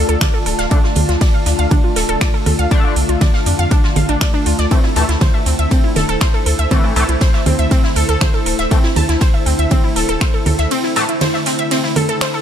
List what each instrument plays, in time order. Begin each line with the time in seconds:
Already playing: synth drone D3 A3, ambient pad F4 D5 A5
0.09 analog synth bass D2, synth pluck A4, closed hi-hat
0.21 synth pluck D5, finger snap, kick, snare, closed hi-hat, ride, low conga
0.34 synth pluck A4, closed hi-hat
0.46 analog synth bass D1, synth pluck A4, closed hi-hat, open hi-hat
0.59 analog synth bass D1, synth pluck F5, snare, closed hi-hat
0.71 analog polysynth D3 A3 D4, synth pluck D4, kick, closed hi-hat, ride
0.84 synth pluck F4, snare
0.95 analog synth bass D2, closed hi-hat, open hi-hat, low conga
1.09 analog synth bass D2, synth pluck F4, snare, closed hi-hat
1.21 synth pluck D5, kick, snare, closed hi-hat, ride
1.34 synth pluck F5
1.45 analog synth bass D2, synth pluck D4, snare, closed hi-hat, open hi-hat
1.59 analog synth bass D2, synth pluck F5, closed hi-hat
1.71 synth pluck D4, kick, closed hi-hat, ride, low conga
1.84 synth pluck F4
1.96 analog synth bass D1, synth pluck A4, snare, closed hi-hat, open hi-hat
2.09 analog synth bass D1, synth pluck A4, closed hi-hat
2.21 synth pluck D5, finger snap, kick, snare, closed hi-hat, ride
2.34 synth pluck A4, closed hi-hat
2.46 analog synth bass D2, synth pluck A4, closed hi-hat, open hi-hat, low conga
2.59 analog synth bass D2, synth pluck F5, closed hi-hat
2.71 analog polysynth D3 A3 D4, synth pluck D4, kick, closed hi-hat, ride
2.84 synth pluck F4
2.96 analog synth bass C2, closed hi-hat, open hi-hat
3.09 analog synth bass C2, synth pluck F4, closed hi-hat
3.21 synth pluck D5, kick, snare, closed hi-hat, ride, low conga
3.34 synth pluck F5, snare
3.46 analog synth bass F2, synth pluck D4, closed hi-hat, open hi-hat
3.59 analog synth bass F2, synth pluck F5, closed hi-hat
3.71 synth pluck D4, kick, closed hi-hat, ride
3.84 synth pluck F4, snare
3.96 analog synth bass A1, synth pluck F5, closed hi-hat, open hi-hat, low conga
4.09 analog synth bass A1, synth pluck D4, closed hi-hat
4.21 synth pluck D5, finger snap, kick, snare, closed hi-hat, ride
4.34 synth pluck D4, closed hi-hat
4.46 analog synth bass D2, synth pluck F4, closed hi-hat, open hi-hat
4.59 analog synth bass D2, synth pluck D5, snare, closed hi-hat
4.71 analog polysynth A2 E3 A3, synth pluck C4, ambient pad E4, kick, closed hi-hat, ride
4.84 synth pluck E4, snare
4.96 analog synth bass D2, analog polysynth A2 E3 A3, ambient pad C5, synth pluck A5, closed hi-hat, open hi-hat
5.09 analog synth bass D2, synth pluck E4, snare, closed hi-hat
5.21 synth pluck C5, kick, snare, closed hi-hat, ride, low conga
5.34 synth pluck E5
5.46 analog synth bass D2, synth pluck C4, snare, closed hi-hat, open hi-hat
5.59 analog synth bass D2, synth pluck E5, closed hi-hat
5.71 synth pluck C4, kick, closed hi-hat, ride
5.84 synth pluck E4
5.96 analog synth bass D1, synth pluck A4, snare, closed hi-hat, open hi-hat, low conga
6.09 analog synth bass D1, synth pluck A4, closed hi-hat
6.21 synth pluck C5, finger snap, kick, snare, closed hi-hat, ride
6.34 synth pluck A4, closed hi-hat
6.46 analog synth bass D2, synth pluck A4, closed hi-hat, open hi-hat
6.59 analog synth bass D2, synth pluck E5, closed hi-hat
6.71 analog polysynth A2 E3 A3, synth pluck C4, kick, closed hi-hat, ride, low conga
6.84 synth pluck E4
6.96 analog synth bass C2, analog polysynth A2 E3 A3, synth pluck A5, closed hi-hat, open hi-hat
7.09 analog synth bass C2, synth pluck E4, closed hi-hat
7.21 synth pluck C5, kick, snare, closed hi-hat, ride
7.34 synth pluck E5, snare
7.46 analog synth bass D2, synth pluck C4, closed hi-hat, open hi-hat, low conga
7.59 analog synth bass D2, synth pluck E5, closed hi-hat
7.71 synth pluck C4, kick, closed hi-hat, ride
7.84 synth pluck E4, snare
7.95 analog synth bass D2, synth pluck A4, closed hi-hat, open hi-hat
8.09 analog synth bass D2, synth pluck A4, closed hi-hat
8.21 synth pluck C5, finger snap, kick, snare, closed hi-hat, ride, low conga
8.34 synth pluck A4, closed hi-hat
8.46 analog synth bass D1, synth pluck A4, closed hi-hat, open hi-hat
8.59 analog synth bass D1, synth pluck E5, snare, closed hi-hat
8.71 analog polysynth A2 E3 A3, synth pluck C4, kick, closed hi-hat, ride
8.83 synth pluck E4, snare
8.96 analog synth bass D2, synth pluck A5, closed hi-hat, open hi-hat, low conga
9.09 analog synth bass D2, synth pluck E4, snare, closed hi-hat
9.21 synth pluck C5, kick, snare, closed hi-hat, ride
9.34 synth pluck E5
9.46 analog synth bass D2, synth pluck C4, closed hi-hat, open hi-hat
9.59 analog synth bass D2, synth pluck E5, closed hi-hat
9.71 synth pluck C4, kick, closed hi-hat, ride, low conga
9.84 synth pluck E4
9.96 analog synth bass D1, synth pluck A4, snare, closed hi-hat, open hi-hat
10.09 analog synth bass D1, synth pluck A4, closed hi-hat
10.21 synth pluck C5, finger snap, kick, snare, closed hi-hat, ride
10.34 synth pluck A4, closed hi-hat
10.46 analog synth bass D2, synth pluck A4, closed hi-hat, open hi-hat, low conga
10.58 analog synth bass D2, synth pluck E5, snare, closed hi-hat
10.71 synth pluck C4, closed hi-hat, ride
10.84 synth pluck E4, snare
10.96 analog polysynth A2 E3 A3, synth pluck A5, snare, closed hi-hat, open hi-hat
11.09 synth pluck E4, closed hi-hat
11.21 synth pluck C5, snare, closed hi-hat, ride, low conga
11.34 synth pluck E5, snare
11.46 synth pluck C4, snare, closed hi-hat, open hi-hat
11.59 synth pluck E5, closed hi-hat
11.71 synth pluck C4, snare, closed hi-hat, ride
11.84 synth pluck E4, snare
11.96 synth pluck A4, closed hi-hat, open hi-hat, low conga
12.09 synth pluck A4, closed hi-hat
12.21 synth pluck C5, finger snap, snare, closed hi-hat, ride
12.33 synth pluck A4, closed hi-hat